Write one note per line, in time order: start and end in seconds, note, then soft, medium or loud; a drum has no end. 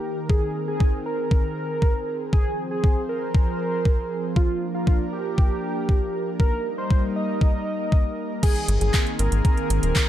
0.00 2.29 D#3 medium
0.00 0.26 A#3 medium
0.00 0.19 G4 loud
0.00 0.28 G4 medium
0.00 2.29 A#4 medium
0.30 4.32 C4 medium
0.30 4.32 G#4 medium
0.30 0.60 G#4 loud
0.30 kick loud
0.68 0.98 G#4 medium
0.80 kick loud
1.06 2.23 A#4 loud
1.31 kick loud
1.82 kick loud
2.33 6.36 F3 medium
2.33 2.63 G#4 loud
2.33 4.34 C5 medium
2.33 kick loud
2.71 3.01 G#4 medium
2.84 kick loud
3.09 4.26 A#4 loud
3.35 kick loud
3.85 kick medium
4.36 8.39 A#3 medium
4.36 6.38 D4 medium
4.36 4.67 F4 medium
4.36 8.39 A#4 medium
4.36 kick loud
4.75 5.05 F4 loud
4.87 kick loud
5.13 6.30 G4 loud
5.38 kick loud
5.89 kick medium
6.40 8.41 G3 medium
6.40 8.41 D#4 medium
6.40 6.70 A#4 loud
6.40 kick loud
6.78 7.08 C5 loud
6.91 kick medium
7.16 8.33 D#5 loud
7.41 kick loud
7.92 kick medium
8.43 10.09 D#3 medium
8.43 10.09 A#3 medium
8.43 10.09 C4 medium
8.43 10.09 G#4 medium
8.43 8.73 G#4 loud
8.43 kick loud
8.43 closed hi-hat medium
8.43 crash loud
8.56 closed hi-hat soft
8.68 8.78 G#1 medium
8.68 closed hi-hat loud
8.81 8.91 G#1 medium
8.81 9.12 G#4 loud
8.81 closed hi-hat medium
8.94 kick loud
8.94 clap loud
8.94 closed hi-hat medium
9.07 closed hi-hat soft
9.19 9.29 G#1 medium
9.19 10.09 A#4 loud
9.19 closed hi-hat loud
9.32 9.42 G#1 medium
9.32 closed hi-hat medium
9.45 kick loud
9.45 closed hi-hat medium
9.57 closed hi-hat soft
9.70 9.80 G#1 loud
9.70 closed hi-hat medium
9.83 9.93 D#1 medium
9.83 closed hi-hat medium
9.96 kick loud
9.96 clap loud
9.96 closed hi-hat medium